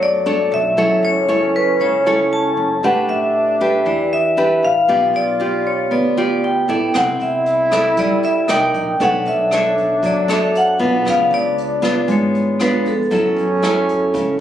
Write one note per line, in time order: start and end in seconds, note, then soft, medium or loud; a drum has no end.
0.00 0.47 F#2 medium
0.00 0.75 F#3 medium
0.00 0.80 A3 medium
0.00 0.21 D4 medium
0.00 0.21 A4 medium
0.00 0.22 C#5 medium
0.00 0.54 D5 medium
0.26 0.59 D4 medium
0.26 0.59 A4 medium
0.26 0.59 C#5 medium
0.52 0.75 B1 loud
0.52 1.01 E5 loud
0.77 1.01 F#1 medium
0.77 1.78 F#3 medium
0.77 2.76 C#4 loud
0.77 1.25 E4 medium
0.77 1.25 A4 medium
0.77 1.25 C#5 medium
1.03 1.76 F#1 medium
1.03 1.57 C#5 loud
1.28 2.02 E4 medium
1.28 2.02 A4 medium
1.28 2.02 C#5 medium
1.56 1.82 B4 medium
1.80 2.53 C#2 medium
1.80 2.81 C#3 medium
1.80 2.28 C#5 medium
2.06 2.79 E4 medium
2.06 2.79 A4 medium
2.06 2.80 C#5 medium
2.33 2.85 A5 loud
2.57 2.81 F#1 loud
2.76 2.85 E4 medium
2.83 3.07 A1 loud
2.83 3.84 A3 medium
2.83 4.62 D4 loud
2.83 3.56 D4 medium
2.83 3.57 G4 medium
2.83 3.57 B4 medium
2.83 3.10 F#5 loud
3.09 3.82 A1 loud
3.09 3.88 E5 loud
3.61 4.33 D4 medium
3.61 4.33 G4 medium
3.61 4.34 B4 medium
3.85 4.59 E2 medium
3.85 4.86 E3 medium
3.85 4.13 D5 medium
4.13 4.65 E5 loud
4.37 4.70 D4 medium
4.37 4.71 G4 medium
4.37 4.71 B4 medium
4.63 4.87 A1 medium
4.63 5.17 F5 loud
4.88 5.12 B1 medium
4.88 5.89 B3 medium
4.88 6.65 F4 loud
4.88 5.22 F4 medium
4.88 5.22 G4 medium
4.88 5.22 D5 medium
5.14 5.87 B1 medium
5.14 5.68 D5 loud
5.40 6.13 F4 medium
5.40 6.13 G4 soft
5.40 6.13 D5 medium
5.67 5.93 C#5 medium
5.91 6.65 D2 medium
5.91 6.92 B3 medium
5.91 6.45 D5 medium
6.17 6.65 F4 medium
6.17 6.65 G4 medium
6.17 6.65 D5 medium
6.44 6.97 G5 medium
6.68 6.92 A1 medium
6.68 7.68 E4 medium
6.68 7.68 A4 medium
6.68 7.68 D5 medium
6.94 7.18 C2 medium
6.94 7.95 C4 medium
6.94 8.50 E4 loud
6.94 7.22 F#5 medium
6.94 kick medium
6.94 cross-stick medium
6.94 closed hi-hat soft
7.20 7.93 C2 medium
7.20 7.94 E5 medium
7.20 closed hi-hat soft
7.46 closed hi-hat soft
7.71 8.45 E4 medium
7.71 8.45 A4 medium
7.71 8.45 D5 medium
7.71 kick soft
7.71 cross-stick medium
7.71 closed hi-hat soft
7.97 8.45 G2 medium
7.97 8.46 G3 medium
7.97 8.25 D5 medium
7.97 kick medium
7.97 closed hi-hat soft
8.23 8.48 E5 medium
8.23 closed hi-hat soft
8.48 8.72 C2 loud
8.48 8.96 D#4 medium
8.48 8.99 D#4 loud
8.48 8.96 A#4 medium
8.48 8.96 D5 medium
8.48 9.02 G5 medium
8.48 cross-stick medium
8.48 closed hi-hat soft
8.74 8.98 A#1 loud
8.74 kick soft
8.74 closed hi-hat soft
9.00 9.24 B1 loud
9.00 10.00 B3 medium
9.00 11.01 D4 loud
9.00 9.48 D4 medium
9.00 9.48 A4 medium
9.00 9.48 C#5 medium
9.00 9.25 F#5 loud
9.00 kick medium
9.00 closed hi-hat soft
9.26 9.99 B1 loud
9.26 10.06 E5 loud
9.26 closed hi-hat soft
9.51 10.25 D4 medium
9.51 10.25 A4 medium
9.51 10.25 C#5 medium
9.51 cross-stick medium
9.51 closed hi-hat soft
9.77 kick soft
9.77 closed hi-hat soft
10.03 10.76 F#2 medium
10.03 11.03 F#3 medium
10.03 10.31 D5 medium
10.03 kick medium
10.03 closed hi-hat soft
10.28 10.76 D4 medium
10.28 10.76 A4 medium
10.28 10.76 C#5 medium
10.28 10.56 E5 medium
10.28 cross-stick medium
10.28 closed hi-hat soft
10.55 11.04 F#5 medium
10.55 closed hi-hat soft
10.79 11.04 B1 loud
10.79 11.78 B3 medium
10.79 11.79 F4 medium
10.79 kick soft
10.79 closed hi-hat soft
11.05 11.30 C#2 loud
11.05 12.06 C#3 medium
11.05 12.80 D4 loud
11.05 kick medium
11.05 cross-stick medium
11.05 closed hi-hat soft
11.09 11.31 F5 loud
11.31 12.04 C#2 loud
11.31 12.06 D5 loud
11.31 closed hi-hat soft
11.58 closed hi-hat soft
11.82 12.55 B3 medium
11.82 12.56 D4 medium
11.82 12.56 F4 medium
11.82 kick soft
11.82 cross-stick medium
11.82 closed hi-hat soft
12.08 12.81 G#1 medium
12.08 13.08 G#3 medium
12.08 12.63 C#5 medium
12.08 kick medium
12.08 closed hi-hat soft
12.34 closed hi-hat soft
12.59 12.93 B3 medium
12.59 12.93 D4 medium
12.59 12.93 F4 medium
12.59 12.85 B4 medium
12.59 cross-stick medium
12.59 closed hi-hat soft
12.85 13.09 F2 medium
12.85 14.40 A4 medium
12.85 kick soft
12.85 closed hi-hat soft
13.11 13.35 F#2 medium
13.11 14.11 F#3 medium
13.11 14.40 C#4 loud
13.11 13.44 C#4 medium
13.11 13.44 E4 medium
13.11 13.45 A4 medium
13.11 kick medium
13.11 closed hi-hat soft
13.36 14.10 F#2 medium
13.36 closed hi-hat soft
13.62 14.36 C#4 medium
13.62 14.36 E4 medium
13.62 14.36 A4 medium
13.62 cross-stick medium
13.62 closed hi-hat soft
13.89 kick soft
13.89 closed hi-hat soft
14.14 14.40 C#2 medium
14.14 14.40 C#3 medium
14.14 kick medium
14.14 closed hi-hat soft